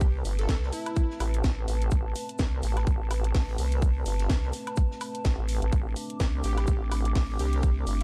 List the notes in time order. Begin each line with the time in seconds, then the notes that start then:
Already playing: C2 A3 C4 B4 A5
0.01 kick, closed hi-hat, shaker
0.25 G1, open hi-hat, shaker
0.39 A4, snare, closed hi-hat
0.48 C2 A4, kick, snare, open hi-hat, shaker
0.63 snare
0.72 E4, open hi-hat, shaker
0.86 closed hi-hat, high woodblock
0.96 kick, closed hi-hat, shaker
1.10 snare
1.20 A1, open hi-hat, high woodblock, shaker
1.34 closed hi-hat
1.44 A1, kick, snare, closed hi-hat, shaker
1.68 A1, open hi-hat, shaker
1.82 closed hi-hat
1.91 A1, kick, closed hi-hat, shaker
2.15 open hi-hat, shaker
2.29 closed hi-hat
2.39 C2, kick, snare, closed hi-hat, shaker
2.63 A1, open hi-hat, shaker
2.77 snare, closed hi-hat, high woodblock
2.87 A1, kick, closed hi-hat, shaker
3.11 open hi-hat, high woodblock, shaker
3.24 closed hi-hat
3.34 A1, kick, snare, closed hi-hat, open hi-hat
3.48 snare
3.58 C2, open hi-hat, shaker
3.72 closed hi-hat
3.82 kick, closed hi-hat, shaker
4.06 G1, open hi-hat, shaker
4.19 snare, closed hi-hat
4.29 C2, kick, snare, open hi-hat, shaker
4.42 snare
4.53 open hi-hat, shaker
4.67 closed hi-hat, high woodblock
4.77 kick, closed hi-hat, shaker
4.91 snare
5.01 open hi-hat, high woodblock, shaker
5.15 closed hi-hat
5.25 A1, kick, snare, closed hi-hat, shaker
5.38 A1
5.48 open hi-hat, shaker
5.62 A1, closed hi-hat
5.72 A1 D4, kick, closed hi-hat, shaker
5.83 D6
5.96 open hi-hat, shaker
6.10 closed hi-hat
6.20 C2, kick, snare, closed hi-hat, shaker
6.44 A1 G4, open hi-hat, shaker
6.58 G4, snare, closed hi-hat, high woodblock
6.67 A1, kick, closed hi-hat, shaker
6.92 open hi-hat, high woodblock, shaker
7.05 closed hi-hat
7.15 A1, kick, snare, closed hi-hat, open hi-hat
7.29 snare
7.39 C2 G4, open hi-hat, shaker
7.53 G4, closed hi-hat
7.63 kick, closed hi-hat, shaker
7.87 G1, open hi-hat, shaker